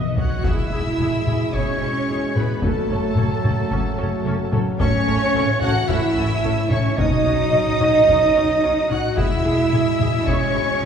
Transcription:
Already playing: double bass section B1, cello section B2, violin section D#5 F#5, viola section D#5
0.06 timpani B2
0.14 timpani B2, cello section F#4, viola section C#5, violin section D#5 F#5 F#6, flute F#5, trumpet section F#5, taiko low
0.18 timpani B2, french horn section F#4
0.29 timpani B2
0.36 timpani B2
0.43 double bass section E1, trombone section B2 G#3, french horn section E4, cello section E4, viola section E4 G#4, violin section E5 E6, flute E5, trumpet section E5, taiko, impact
0.72 double bass section E1, viola section E4 G#4
0.99 double bass section E1, viola section E4 G#4, taiko mid
1.27 double bass section E1, viola section E4 G#4, taiko mid
1.54 double bass section E1, french horn section C#4, cello section C#4, viola section E4 G#4, flute C#5, trumpet section C#5, violin section C#5 C#6, taiko
1.81 double bass section E1, viola section E4 G#4
2.09 double bass section E1, viola section E4 G#4
2.36 double bass section E1, french horn section B3, cello section B3, viola section E4 G#4, flute B4, trumpet section B4, violin section B4 B5, taiko mid
2.62 double bass section F#1, trombone section C#3 F#3, cello section A3, french horn section A3, viola section C#4 A4, flute A4, trumpet section A4, violin section A4 A5, taiko
2.90 double bass section F#1, viola section C#4 A4
3.16 double bass section F#1, viola section C#4 A4, taiko mid
3.44 double bass section F#1, viola section C#4 A4, taiko mid
3.71 double bass section F#1, viola section C#4 A4, taiko
3.97 double bass section F#1, viola section C#4 A4
4.25 double bass section F#1, viola section C#4 A4
4.52 double bass section F#1, viola section C#4 A4, taiko mid
4.79 double bass section A1, trombone section E3, viola section C#4 A4, french horn section C#4, cello section C#4, trumpet section C#5, flute C#5, violin section C#5 C#6, taiko
5.07 double bass section A1, viola section C#4 A4
5.34 double bass section A1, viola section C#4 A4, taiko mid
5.61 double bass section A1, viola section C#4 A4, cello section F#4, french horn section F#4, flute F#5, trumpet section F#5, violin section F#5 F#6, taiko mid
5.88 double bass section A1, viola section C#4 A4, cello section E4, french horn section E4, flute E5, trumpet section E5, violin section E5 E6, taiko
6.16 double bass section A1, viola section C#4 A4
6.43 double bass section A1, viola section C#4 A4
6.70 double bass section A1, french horn section C#4, viola section C#4 A4, cello section C#4, flute C#5, trumpet section C#5, violin section C#5 C#6, taiko mid
6.97 double bass section B1, timpani B2, trombone section C#3 F#3, viola section C#4 F#4, french horn section D#4, cello section D#4, flute D#5, violin section D#5 D#6, trumpet section D#5, taiko
7.25 double bass section B1, viola section C#4 F#4
7.52 double bass section B1, viola section C#4 F#4, taiko mid
7.80 double bass section B1, viola section C#4 F#4, taiko mid
8.08 double bass section B1, viola section C#4 F#4, taiko
8.35 double bass section B1, viola section C#4 F#4
8.62 double bass section B1, viola section C#4 F#4
8.89 double bass section B1, viola section C#4 F#4, cello section F#4, french horn section F#4, flute F#5, trumpet section F#5, violin section F#5 F#6, taiko mid
9.16 double bass section E1, timpani E2, trombone section B2 G#3, viola section E4 G#4, cello section E4, french horn section E4, flute E5, violin section E5 E6, trumpet section E5, taiko
9.44 double bass section E1, viola section E4 G#4
9.72 double bass section E1, viola section E4 G#4, taiko mid
10.00 double bass section E1, viola section E4 G#4, taiko mid
10.27 double bass section E1, french horn section C#4, cello section C#4, viola section E4 G#4, flute C#5, trumpet section C#5, violin section C#5 C#6, taiko
10.54 double bass section E1, viola section E4 G#4
10.82 double bass section E1, viola section E4 G#4

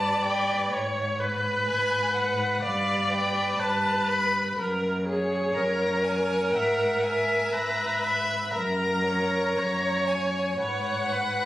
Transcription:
Already playing: cello G2, violin B4 A5, viola D5
0.23 violin B4 G5
0.72 cello G#2, viola C#5
1.19 violin B4, viola B4
1.67 cello G#2, violin G#5
2.14 violin B4 F#5
2.62 cello G2, violin B4 F5, viola D5
3.11 violin B4 G5
3.58 cello G2, viola B4, violin A5
4.07 violin B4 B5
4.57 cello F#2, viola A#4
5.07 viola G#4, violin C#5
5.55 cello F#2, viola A#4, violin A#5
6.05 violin C#5 G#5
6.54 cello G#2, violin E5 F#5
7.03 violin E5 G#5
7.52 cello G#2, viola B4, violin A#5
8.02 violin E5 B5
8.54 cello F#2, viola A#4, violin A#5
9.05 violin C#5
9.57 cello F#2, viola C#5
10.07 violin C#5 G#5
10.57 cello G#2, violin B4 F#5, viola C#5
11.10 violin B4, viola B4

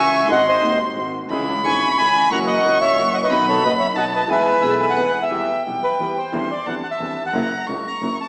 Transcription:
Already playing: double bass C#2, grand piano C#2 C#3 E3 A#3 C#4, bandoneon E5 G#5, violin C#6
0.00 grand piano F#4
0.27 double bass G#1, grand piano G#1 G#2 D#3 G#3 C4 F#4, violin C6
0.32 bandoneon D#5 F#5
0.48 bandoneon C5 D#5
0.61 grand piano D#1 D#2 D#3 G#3 C4, double bass D#2
0.65 grand piano F#4
0.94 double bass G#1, grand piano G#1 G#2 D#3 G#3 C4
0.98 grand piano F#4
1.29 double bass C#2, grand piano C#2 C#3 E3 G#3 C#4 G#4, string section C#4 E4 G#4, violin B5
1.63 double bass G#1, grand piano G#1 G#2 E3 G#3 C#4, string section C#4 E4 G#4, bandoneon G#5 C#6
1.67 grand piano G#4
1.91 bandoneon C#6
1.96 double bass C#2, grand piano C#2 C#3 E3 G#3 C#4, string section C#4 E4 G#4, bandoneon G#5 B5
2.02 grand piano G#4
2.30 double bass F#1, grand piano F#2 E3 F#3 A#3 C#4, string section A#3 E4 F#4, bandoneon F#5 A#5, violin C#6
2.34 grand piano F#4
2.47 bandoneon D#5 F#5
2.62 double bass C#2, grand piano C#2 C#3 E3 A#3 C#4, string section A#3 E4 F#4
2.68 grand piano F#4
2.81 bandoneon C#5 E5
2.95 double bass F#1, grand piano F#2 E3 F#3 A#3 C#4 F#4, string section A#3 E4 F#4
3.14 bandoneon D#5 F#5
3.23 bandoneon B4 D#5
3.28 double bass B1, grand piano B1 B2 D#3 F#3 B3, string section B3 D#4 F#4, violin B5
3.32 grand piano F#4
3.49 bandoneon A4 C#5
3.61 double bass F#1, grand piano F#1 F#2 D#3 F#3 B3, string section B3 D#4 F#4, bandoneon B4
3.66 grand piano F#4, bandoneon D#5
3.79 bandoneon C#5 E5
3.93 grand piano B1 B2 D#3 F#3 B3 F#4, double bass B1, string section B3 D#4 F#4, bandoneon F#5, violin A5
3.98 bandoneon D#5
4.15 bandoneon B4 D#5
4.27 double bass E2, grand piano E2 E3 G#3 B3 G#4, string section B3 E4 G#4, bandoneon B4, violin G#5
4.32 bandoneon E5
4.61 double bass B1, grand piano B1 B2 E3 G#3 B3, string section B3 E4 G#4, vibraphone G#4, violin E5
4.65 grand piano G#4
4.71 vibraphone A4
4.80 bandoneon E5, violin G#5
4.90 bandoneon F#5
4.95 double bass E2, grand piano E2 E3 G#3 B3, string section B3 E4 G#4, vibraphone B4
5.00 grand piano G#4
5.23 bandoneon E5
5.30 grand piano E2 E3 G3 B3 G4, double bass E2, violin G5
5.66 double bass B1, grand piano B1 B2 E3 G3 B3 G4
5.84 bandoneon B4
6.00 double bass E2, grand piano E2 E3 G3 B3 G4
6.18 bandoneon C5
6.32 grand piano E2 D3 E3 G3 C4 E4, double bass E2, violin C6
6.51 bandoneon D5
6.66 double bass E2, grand piano E2 D3 E3 G3 C4 E4, bandoneon F#5, violin A5
6.84 bandoneon F#5
6.91 bandoneon E5
7.00 double bass E2, grand piano E2 D3 E3 G3 C4 E4
7.22 grand piano D#2
7.26 grand piano E2, bandoneon F#5
7.32 double bass F#1, grand piano F2 F#2 C#3 F#3 A#3 E4, violin A#5
7.67 double bass C#2, grand piano C#2 C#3 F#3 A#3 E4, violin C#6
7.87 bandoneon A#5
8.02 double bass F#1, grand piano F#2 C#3 F#3 A#3 E4
8.21 bandoneon A5

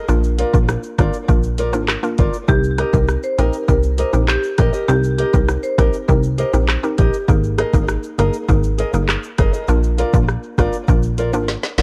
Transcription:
0.08 analog synth bass A#1, synth pluck A#3 D4 F4 A#4, shaker
0.23 shaker
0.38 nylon-string guitar F4 A#4 D5, closed hi-hat, shaker
0.53 analog synth bass A#1, synth pluck A#3 D4 F4 A#4, kick, shaker
0.68 cross-stick, high timbale, shaker
0.83 shaker
0.98 analog synth bass G#1, synth pluck A#3 D4 F4 A#4, nylon-string guitar F4 A#4 D5, kick, cross-stick, closed hi-hat, shaker
1.13 shaker
1.28 analog synth bass A#1, synth pluck A#3 D4 F4 A#4, kick, shaker
1.43 shaker
1.58 nylon-string guitar F4 A#4 D5, closed hi-hat, shaker
1.73 analog synth bass G#1, synth pluck A#3 D4 F4 A#4, muted nylon-string guitar stroke, high timbale, shaker
1.88 cross-stick, clap, shaker
2.03 synth pluck A#3 D4 F4 A#4, shaker
2.18 analog synth bass G#1, nylon-string guitar F4 A#4 D5, kick, closed hi-hat, shaker
2.34 shaker
2.48 analog synth bass C2, synth pluck C4 D#4 G4 A#4, marimba G4, kick, shaker
2.64 shaker
2.78 nylon-string guitar G4 A#4 D#5, marimba G4, cross-stick, closed hi-hat, shaker
2.93 analog synth bass C2, synth pluck C4 D#4 G4 A#4, marimba A#4, kick, shaker
3.08 cross-stick, shaker
3.23 marimba C5, shaker
3.38 analog synth bass A#1, synth pluck C4 D#4 G4 A#4, nylon-string guitar G4 A#4 D#5, marimba A#4, closed hi-hat, shaker
3.53 shaker
3.68 analog synth bass C2, synth pluck C4 D#4 G4 A#4, marimba A#4, kick, shaker
3.83 shaker
3.98 nylon-string guitar G4 A#4 D#5, marimba C5, closed hi-hat, shaker
4.13 analog synth bass A#1, synth pluck C4 D#4 G4 A#4, muted nylon-string guitar stroke, shaker
4.28 marimba G4, cross-stick, clap, shaker
4.43 shaker
4.58 analog synth bass A#1, nylon-string guitar G4 A#4 D#5, marimba A#4, kick, cross-stick, closed hi-hat, shaker
4.73 nylon-string guitar G4 A#4 D#5, shaker
4.88 analog synth bass C2, synth pluck C4 D#4 G4 A#4, marimba G4, shaker
5.04 shaker
5.18 nylon-string guitar G4 A#4 D#5, marimba G4, closed hi-hat, shaker
5.33 analog synth bass C2, synth pluck C4 D#4 G4 A#4, marimba A#4, kick, shaker
5.48 cross-stick, high timbale, shaker
5.63 marimba C5, shaker
5.78 analog synth bass A#1, synth pluck C4 D#4 G4 A#4, nylon-string guitar G4 A#4 D#5, marimba A#4, kick, cross-stick, closed hi-hat, shaker
5.93 shaker
6.08 analog synth bass C2, synth pluck C4 D#4 G4 A#4, marimba A#4, kick, shaker
6.23 shaker
6.38 nylon-string guitar G4 A#4 D#5, marimba C5, closed hi-hat, shaker
6.53 analog synth bass A#1, synth pluck C4 D#4 G4 A#4, muted nylon-string guitar stroke, high timbale, shaker
6.69 cross-stick, clap, shaker
6.83 synth pluck C4 D#4 G4 A#4, shaker
6.98 analog synth bass A#1, nylon-string guitar G4 A#4 D#5, marimba G4, kick, closed hi-hat, shaker
7.14 shaker
7.28 analog synth bass G#1, synth pluck A#3 D#4 G#4 A#4, kick, shaker
7.44 shaker
7.58 nylon-string guitar G#4 A#4 D#5, cross-stick, closed hi-hat, shaker
7.74 analog synth bass G#1, synth pluck A#3 D#4 G#4 A#4, kick, shaker
7.88 cross-stick, shaker
8.03 shaker
8.18 analog synth bass G1, synth pluck A#3 D#4 G#4 A#4, nylon-string guitar G#4 A#4 D#5, closed hi-hat, shaker
8.33 shaker
8.48 analog synth bass G#1, synth pluck A#3 D#4 G#4 A#4, kick, shaker
8.63 shaker
8.78 nylon-string guitar G#4 A#4 D#5, closed hi-hat, shaker
8.93 analog synth bass G1, synth pluck A#3 D#4 G#4 A#4, muted nylon-string guitar stroke, shaker
9.08 cross-stick, clap, shaker
9.23 shaker
9.38 analog synth bass G1, nylon-string guitar G#4 A#4 D#5, kick, cross-stick, closed hi-hat, shaker
9.53 nylon-string guitar G#4 A#4 D#5, shaker
9.68 analog synth bass A#1, synth pluck A#3 D4 F4 A#4, shaker
9.84 shaker
9.98 nylon-string guitar F4 A#4 D5, closed hi-hat, shaker
10.14 analog synth bass A#1, synth pluck A#3 D4 F4 A#4, kick, shaker
10.28 cross-stick, shaker
10.43 shaker
10.58 analog synth bass G#1, synth pluck A#3 D4 F4 A#4, nylon-string guitar F4 A#4 D5, kick, cross-stick, closed hi-hat, shaker
10.73 shaker
10.88 analog synth bass A#1, synth pluck A#3 D4 F4 A#4, kick, shaker
11.03 shaker
11.18 nylon-string guitar F4 A#4 D5, closed hi-hat, shaker
11.33 analog synth bass G#1, synth pluck A#3 D4 F4 A#4, muted nylon-string guitar stroke, high timbale, shaker
11.48 snare, shaker
11.63 snare, shaker
11.78 analog synth bass G#1, nylon-string guitar F4 A#4, snare, closed hi-hat, high timbale, shaker

